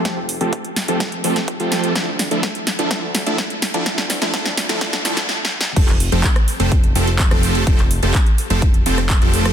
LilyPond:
<<
  \new Staff \with { instrumentName = "Supersaw synth" } { \time 4/4 \key f \major \tempo 4 = 126 <c' g'>16 r8 <f a c' g' a'>16 r8. <f a c' g' a'>16 r8 <f a c' g' a'>16 r8 <f a c' g' a'>8. | <f a e'>16 r8 <f a d' e' a'>16 r8. <f a d' e' a'>16 <f a e'>16 r8 <f a d' e' a'>16 r8. <f a d' e' a'>16 | <f a d' e' a'>16 r8 <f a d' e' a'>16 <f a d' e' a'>16 r8 <f a d' e' a'>16 <f a d' e'>16 r16 <f a d' e' a'>16 r4 r16 | <f a c' g' a'>16 r8 <f a c' g' a'>16 r8. <f a c' g' a'>16 r8 <f a c' g' a'>16 r8 <f a c' g' a'>8. |
r8. <f a c' g' a'>16 r8. <f a c' g' a'>16 r8 <f a c' g' a'>16 r8 <f a c' g' a'>8. | }
  \new Staff \with { instrumentName = "Analog synth bass" } { \clef bass \time 4/4 \key f \major f,,8. f,,16 r8. f,,8. f,,8. f,8. | d,8. d,16 r8. d,16 r8. d,16 r8. d,16 | r8. d,16 d,8. d,16 d,8 d,8 r4 | f,,8. f,,16 r8. f,,8. f,,8. f,,8. |
r8. f,,16 r8. f,,8. f,,8. f,,8. | }
  \new DrumStaff \with { instrumentName = "Drums" } \drummode { \time 4/4 <hh bd sn>8 hho16 hh16 <hh bd>16 hh16 <hho sn>16 hh16 <hh bd sn>16 hh16 hho16 <hh sn>16 <hh bd>16 hh16 <hho sn>16 hh16 | <hh bd sn>8 <hho sn>16 hh16 <hh bd sn>16 hh16 <hho sn>16 hh16 <hh bd sn>8 <hho sn>16 hh16 <hh bd sn>16 hh16 <hho sn>16 hh16 | <hh bd sn>16 sn16 <hho sn>16 <hh sn>16 <hh bd sn>16 <hh sn>16 <hho sn>16 <hh sn>16 <hh bd sn>16 <hh sn>16 <hho sn>16 <hh sn>16 \tuplet 3/2 { sn8 sn8 sn8 } | <cymc hh bd>16 <hc hh>16 hho16 hh16 <hc hh bd>16 <hh ss>16 hho16 hh16 <hh bd>16 hh16 hho16 hh16 <hc hh bd>16 <hh ss>16 hho16 hh16 |
<hh bd>16 <hc hh>16 hho16 hh16 <hc hh bd>16 hh16 hho16 hh16 <hh bd>16 hh16 hho16 <hh ss>16 <hc hh bd>16 hh16 hho16 <hh ss>16 | }
>>